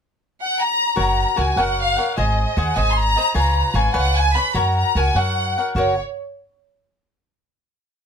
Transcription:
0.41 violin section F#5
0.60 violin section A#5
0.96 upright bass F#1, cavaquinho F#4 A#4 C#5 F#5, violin section A#5
1.36 upright bass C#2, cavaquinho F#4 A#4 C#5 F#5, violin section G#5
1.56 upright bass F#1, cavaquinho F#4 A#4 C#5 F#5
1.61 violin section F#5
1.81 violin section F5
1.97 cavaquinho A#4 C#5 F#5
2.17 upright bass G#1, cavaquinho G#4 C5 D#5 G#5, violin section D#5
2.57 upright bass D#2, cavaquinho G#4 C5 D#5 G#5, violin section F#5
2.76 upright bass G#1, cavaquinho G#4 C5 D#5 G#5, violin section G#5
2.91 violin section C6
2.98 violin section A#5
3.16 cavaquinho C5 D#5 G#5
3.34 upright bass C#2, cavaquinho F4 B4 C#5 G#5, violin section A#5
3.74 upright bass G#1, cavaquinho F4 B4 C#5 G#5, violin section G#5
3.94 upright bass C#2, cavaquinho F4 B4 C#5 G#5, violin section F#5
4.17 violin section G#5
4.35 cavaquinho B4 C#5 G#5, violin section B5
4.54 upright bass F#2, cavaquinho F#4 A#4 C#5 F#5, violin section A#5
4.77 violin section A#5
4.95 upright bass C#2, cavaquinho F#4 A#4 C#5 F#5, violin section G#5
5.15 upright bass F#2, cavaquinho F#4 A#4 C#5 F#5, violin section F#5
5.58 cavaquinho A#4 C#5 F#5
5.75 upright bass F#1, cavaquinho F#4 A#4 C#5 F#5, violin section C#5

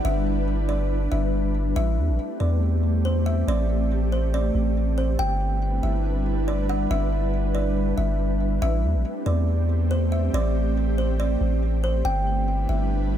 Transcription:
Already playing: ambient pad G3 D4 E4 B4
0.05 808-style bass G1, kalimba E5
0.69 kalimba D5
1.12 808-style bass G1, kalimba E5
1.76 808-style bass A1, ambient pad A3 C4 G4, kalimba E5
1.98 808-style bass E2
2.09 808-style bass A1
2.40 808-style bass E2, kalimba D5
3.05 kalimba C5
3.26 kalimba E5
3.48 808-style bass A1, kalimba D5
4.12 kalimba C5
4.34 kalimba D5
4.55 808-style bass A1
4.98 kalimba C5
5.19 808-style bass G1, ambient pad G3 D4 E4 B4, kalimba G5
5.83 808-style bass G1, kalimba E5
6.48 kalimba D5
6.69 kalimba F#5
6.91 808-style bass G1, kalimba E5
7.55 kalimba D5
7.98 808-style bass G1, kalimba E5
8.62 808-style bass A1, ambient pad A3 C4 G4, kalimba E5
8.84 808-style bass E2
8.94 808-style bass A1
9.26 808-style bass E2, kalimba D5
9.91 kalimba C5
10.12 kalimba E5
10.34 808-style bass A1, kalimba D5
10.98 kalimba C5
11.20 kalimba D5
11.41 808-style bass A1
11.84 kalimba C5
12.05 808-style bass G1, ambient pad G3 D4 E4 B4, kalimba G5
12.69 808-style bass G1, kalimba E5

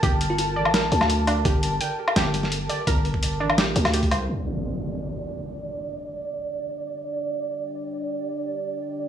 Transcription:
Already playing: synth texture A#4, ambient pad A5
0.03 808-style bass G1, synth pluck G4, kick, closed hi-hat
0.21 closed hi-hat
0.30 fm electric piano F4
0.38 fm electric piano F4, closed hi-hat
0.56 808-style bass A1, synth pluck D5
0.65 low woodblock
0.74 synth pluck A#4, snare, closed hi-hat
0.92 808-style bass D2, closed hi-hat
1.01 snare, low woodblock
1.10 closed hi-hat
1.27 synth pluck D4, closed hi-hat, low woodblock
1.45 808-style bass G1, synth pluck G4, kick, closed hi-hat
1.63 closed hi-hat
1.81 synth pluck G5, closed hi-hat
2.08 low woodblock
2.16 808-style bass G1, synth pluck G4, snare, closed hi-hat
2.34 closed hi-hat
2.43 snare
2.52 closed hi-hat
2.69 synth pluck D5, closed hi-hat
2.87 808-style bass G1, synth pluck A#4, kick, closed hi-hat
3.05 open hi-hat
3.14 kick
3.23 closed hi-hat
3.40 808-style bass A1, synth pluck D4
3.50 low woodblock
3.58 synth pluck G4, snare, closed hi-hat
3.76 808-style bass D2, closed hi-hat
3.85 snare, open hi-hat, low woodblock
3.94 synth pluck G4, closed hi-hat
4.03 kick, open hi-hat
4.11 808-style bass C2, synth pluck C5, closed hi-hat, low woodblock
4.29 ambient pad D4, synth texture D5, crash, impact
4.39 ambient pad G4
4.47 ambient pad D5
4.76 ambient pad G5

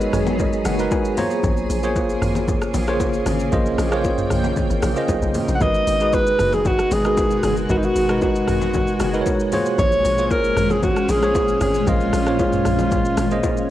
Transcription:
Already playing: ambient pad F#3 B3 G#4, tine electric piano G#3 D#4 F#4 A#4 B4 C#5
0.01 shaker
0.13 log drum bass G#1, tine electric piano C#5, cross-stick, mid tom, open hi-hat, shaker
0.27 low bongo, shaker
0.39 tine electric piano D#5, kick, low conga, shaker
0.53 shaker
0.65 log drum bass F#1, tine electric piano F#5, cross-stick, open hi-hat, low bongo, shaker
0.79 tine electric piano G#3 D#4 F#4 A#4 B4, shaker
0.91 tine electric piano G#5, kick, high bongo, shaker
1.05 shaker
1.17 ambient pad C#3 A#3, tine electric piano A#3 F4 G#4 C5 C#5 A#5, open hi-hat, low conga, shaker
1.31 shaker
1.43 log drum bass A#1, kick, low conga, shaker
1.57 shaker
1.70 log drum bass A#1, open hi-hat, shaker
1.83 tine electric piano A#3 F4 G#4 C5 C#5, shaker
1.96 kick, high bongo, shaker
2.09 shaker
2.22 log drum bass G#1, cross-stick, mid tom, open hi-hat, shaker
2.35 low bongo, shaker
2.48 kick, low conga, shaker
2.62 cross-stick, shaker
2.74 log drum bass A#1, open hi-hat, low bongo, shaker
2.87 tine electric piano A#3 F4 G#4 C5 C#5, cross-stick, shaker
3.00 kick, high bongo, shaker
3.14 shaker
3.26 log drum bass G#1, ambient pad G5, cross-stick, open hi-hat, low conga, shaker
3.40 shaker
3.52 log drum bass A#1, tine electric piano A#3 F4 G#4 C5 D#5, kick, low conga, shaker
3.66 shaker
3.78 log drum bass A#1, cross-stick, open hi-hat, high bongo, low bongo, shaker
3.92 tine electric piano A#3 F4 G#4 C5 C#5, cross-stick, shaker
4.04 kick, high bongo, shaker
4.18 mid tom, shaker
4.30 log drum bass A#1, cross-stick, mid tom, open hi-hat, shaker
4.44 low bongo, shaker
4.56 kick, low conga, shaker
4.70 log drum bass G#1, shaker
4.82 log drum bass A#1, cross-stick, open hi-hat, low bongo, shaker
4.96 tine electric piano A#3 F4 G#4 C5 D#5, shaker
5.09 log drum bass B1, kick, high bongo, shaker
5.22 log drum bass B1, shaker
5.34 open hi-hat, low conga, shaker
5.48 log drum bass A#1, shaker
5.55 alto saxophone F#5
5.61 log drum bass G#1, ambient pad B2 G#3 F#4, tine electric piano G#3 D#4 F#4 A#4 B4, alto saxophone D#5, kick, low conga, shaker
5.75 shaker
5.87 log drum bass G#1, open hi-hat, shaker
6.00 tine electric piano G#3 D#4 F#4 G#4 B4, shaker
6.13 alto saxophone B4, kick, high bongo, shaker
6.27 shaker
6.39 log drum bass F#1, cross-stick, mid tom, open hi-hat, shaker
6.53 alto saxophone G#4, low bongo, shaker
6.65 alto saxophone F#4, kick, low conga, shaker
6.79 cross-stick, shaker
6.91 log drum bass G#1, alto saxophone G#4, open hi-hat, low bongo, shaker
7.05 tine electric piano G#3 D#4 F#4 A#4 B4, cross-stick, shaker
7.17 kick, high bongo, shaker
7.31 shaker
7.43 log drum bass F#1, alto saxophone G#4, cross-stick, open hi-hat, low conga, shaker
7.57 shaker
7.69 log drum bass G#1, tine electric piano G#3 D#4 F#4 A#4 B4, alto saxophone F#4, kick, low conga, shaker
7.78 alto saxophone D#4
7.83 alto saxophone F#4, shaker
7.96 log drum bass G#1, open hi-hat, shaker
8.09 tine electric piano G#3 D#4 F#4 A#4 B4, cross-stick, shaker
8.22 alto saxophone F#4, kick, high bongo, shaker
8.35 shaker
8.48 log drum bass G#1, cross-stick, mid tom, open hi-hat, shaker
8.61 low bongo, shaker
8.74 kick, low conga, shaker
8.88 shaker
9.00 log drum bass F#1, cross-stick, open hi-hat, low bongo, shaker
9.13 tine electric piano G#3 D#4 F#4 A#4 B4, shaker
9.21 tine electric piano C#5
9.26 kick, high bongo, shaker
9.40 shaker
9.52 ambient pad A#2 C#4, tine electric piano A#3 F4 G#4 C5 C#5, open hi-hat, low conga, shaker
9.66 shaker
9.78 log drum bass A#1, alto saxophone C#5, kick, low conga, shaker
9.92 shaker
10.04 log drum bass A#1, open hi-hat, shaker
10.18 tine electric piano A#3 F4 G#4 C5 C#5, shaker
10.30 alto saxophone A#4, kick, high bongo, shaker
10.44 shaker
10.57 log drum bass G#1, cross-stick, mid tom, open hi-hat, shaker
10.70 alto saxophone G#4, low bongo, shaker
10.83 alto saxophone F#4, kick, low conga, shaker
10.96 cross-stick, shaker
11.09 log drum bass A#1, alto saxophone G#4, open hi-hat, low bongo, shaker
11.22 tine electric piano A#3 F4 G#4 C5 C#5, cross-stick, shaker
11.35 kick, high bongo, shaker
11.48 shaker
11.61 log drum bass G#1, alto saxophone G#4, cross-stick, open hi-hat, low conga, shaker
11.74 shaker
11.87 log drum bass A#1, tine electric piano A#3 F4 G#4 C5 D#5, alto saxophone F4, kick, low conga, shaker
12.00 shaker
12.13 log drum bass A#1, cross-stick, open hi-hat, shaker
12.26 tine electric piano A#3 F4 G#4 C5 C#5, cross-stick, shaker
12.39 alto saxophone F4, kick, high bongo, shaker
12.53 mid tom, shaker
12.65 log drum bass A#1, cross-stick, mid tom, open hi-hat, shaker
12.79 low bongo, shaker
12.91 kick, low conga, shaker
13.05 shaker
13.17 log drum bass G#1, cross-stick, open hi-hat, low bongo, shaker
13.31 tine electric piano A#3 F4 G#4 C5 D#5, shaker
13.43 kick, high bongo, shaker
13.57 shaker

